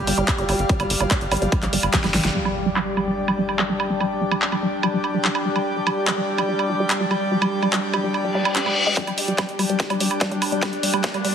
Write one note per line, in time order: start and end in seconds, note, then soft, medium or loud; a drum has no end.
0.00 2.34 G3 medium
0.00 2.34 G4 medium
0.00 2.37 G4 medium
0.00 2.35 D5 medium
0.00 2.37 F5 medium
0.07 0.13 G1 loud
0.07 0.12 G3 medium
0.07 open hi-hat loud
0.18 0.23 G1 medium
0.18 0.25 G3 medium
0.18 closed hi-hat medium
0.28 kick loud
0.28 clap loud
0.28 closed hi-hat medium
0.28 high woodblock medium
0.38 0.44 G1 medium
0.38 0.43 G3 medium
0.38 closed hi-hat medium
0.49 0.54 G1 loud
0.49 0.56 G3 medium
0.49 open hi-hat medium
0.49 high woodblock soft
0.59 0.65 G1 medium
0.59 closed hi-hat medium
0.69 0.74 G3 medium
0.69 kick loud
0.69 closed hi-hat medium
0.80 0.85 G1 medium
0.80 0.87 G3 medium
0.80 closed hi-hat medium
0.80 high woodblock medium
0.90 0.96 G1 medium
0.90 open hi-hat loud
1.00 1.06 G1 medium
1.00 1.05 G3 medium
1.00 closed hi-hat medium
1.00 high woodblock soft
1.11 1.18 G3 medium
1.11 kick loud
1.11 clap loud
1.11 closed hi-hat medium
1.21 1.27 G1 medium
1.21 closed hi-hat medium
1.31 1.37 G#1 loud
1.31 1.36 G3 medium
1.31 open hi-hat medium
1.31 high woodblock medium
1.37 closed hi-hat medium
1.42 1.48 G1 medium
1.42 1.49 G3 medium
1.42 closed hi-hat medium
1.52 kick loud
1.52 closed hi-hat medium
1.52 high woodblock soft
1.62 1.68 A#1 medium
1.62 1.67 G3 medium
1.62 clap soft
1.62 closed hi-hat medium
1.73 1.79 G1 loud
1.73 1.80 G3 medium
1.73 open hi-hat loud
1.83 1.89 G1 medium
1.83 closed hi-hat medium
1.83 high woodblock medium
1.94 1.98 G3 medium
1.94 kick loud
1.94 snare medium
1.94 clap loud
1.94 closed hi-hat medium
2.04 2.10 G1 medium
2.04 2.11 G3 medium
2.04 snare medium
2.04 closed hi-hat medium
2.04 high woodblock soft
2.14 2.20 G1 loud
2.14 snare medium
2.14 open hi-hat medium
2.25 2.30 G1 medium
2.25 2.29 G3 medium
2.25 snare medium
2.25 closed hi-hat medium
2.35 8.96 G3 medium
2.35 2.40 G3 medium
2.35 8.96 D4 medium
2.35 11.35 G4 medium
2.35 impact medium
2.40 11.35 D5 medium
2.45 2.52 G3 medium
2.45 high woodblock soft
2.62 11.35 G5 medium
2.66 2.71 G3 medium
2.76 2.83 G3 medium
2.76 clap loud
2.76 high woodblock medium
2.97 3.02 G3 medium
2.97 high woodblock soft
3.07 3.14 G3 medium
3.28 3.33 G3 medium
3.28 high woodblock medium
3.38 3.45 G3 medium
3.49 high woodblock soft
3.59 3.64 G3 medium
3.59 clap loud
3.69 3.76 G3 medium
3.80 high woodblock medium
3.90 3.95 G3 medium
4.00 4.07 G3 medium
4.00 high woodblock soft
4.21 4.26 G3 medium
4.31 4.38 G3 medium
4.31 high woodblock medium
4.42 clap loud
4.52 4.57 G3 medium
4.52 high woodblock soft
4.63 4.69 G3 medium
4.83 4.88 G3 medium
4.83 high woodblock medium
4.94 5.00 G3 medium
5.04 high woodblock soft
5.14 5.19 G3 medium
5.25 5.31 G3 medium
5.25 clap loud
5.35 high woodblock medium
5.45 5.50 G3 medium
5.56 5.62 G3 medium
5.56 high woodblock soft
5.76 5.81 G3 medium
5.87 5.94 G3 medium
5.87 high woodblock medium
6.07 6.12 G3 medium
6.07 clap loud
6.07 high woodblock soft
6.18 6.25 G3 medium
6.38 6.43 G3 medium
6.38 high woodblock medium
6.49 6.56 G3 medium
6.59 high woodblock soft
6.69 6.74 G3 medium
6.80 6.87 G3 medium
6.90 clap loud
6.90 high woodblock medium
7.00 7.05 G3 medium
7.11 7.18 G3 medium
7.11 high woodblock soft
7.32 7.36 G3 medium
7.42 7.49 G3 medium
7.42 high woodblock medium
7.63 7.67 G3 medium
7.63 high woodblock soft
7.73 7.80 G3 medium
7.73 clap loud
7.94 7.98 G3 medium
7.94 high woodblock medium
8.04 8.11 G3 medium
8.14 reverse cymbal medium
8.14 high woodblock soft
8.25 8.29 G3 medium
8.35 8.42 G3 medium
8.45 high woodblock medium
8.56 8.60 D4 medium
8.56 clap loud
8.66 8.73 G#3 medium
8.66 high woodblock soft
8.87 8.89 G#3 loud
8.97 11.35 G3 medium
8.97 9.02 G3 medium
8.97 11.35 D4 medium
8.97 kick loud
8.97 snare soft
8.97 closed hi-hat medium
8.97 riser medium
9.07 9.14 G3 medium
9.07 closed hi-hat medium
9.07 high woodblock soft
9.18 open hi-hat loud
9.28 9.33 G3 medium
9.28 closed hi-hat medium
9.38 9.45 G3 medium
9.38 kick loud
9.38 snare soft
9.38 closed hi-hat medium
9.38 high woodblock medium
9.49 closed hi-hat soft
9.59 9.64 G3 medium
9.59 open hi-hat medium
9.59 high woodblock soft
9.69 9.76 G3 medium
9.69 closed hi-hat medium
9.80 kick loud
9.80 snare medium
9.80 closed hi-hat medium
9.90 9.95 G3 medium
9.90 closed hi-hat medium
9.90 high woodblock medium
10.00 10.07 G3 medium
10.00 open hi-hat loud
10.11 closed hi-hat medium
10.11 high woodblock soft
10.21 10.26 G3 medium
10.21 kick loud
10.21 snare medium
10.21 closed hi-hat medium
10.32 10.38 G3 medium
10.32 closed hi-hat medium
10.42 open hi-hat loud
10.42 high woodblock medium
10.52 10.57 G3 medium
10.52 closed hi-hat medium
10.63 10.69 G3 medium
10.63 kick loud
10.63 snare medium
10.63 closed hi-hat medium
10.63 high woodblock soft
10.73 closed hi-hat medium
10.83 10.88 G3 medium
10.83 open hi-hat loud
10.94 11.00 G3 medium
10.94 high woodblock medium
11.04 kick loud
11.04 snare medium
11.04 closed hi-hat medium
11.14 11.19 G3 medium
11.14 closed hi-hat soft
11.14 high woodblock soft
11.25 11.31 G3 medium
11.25 open hi-hat medium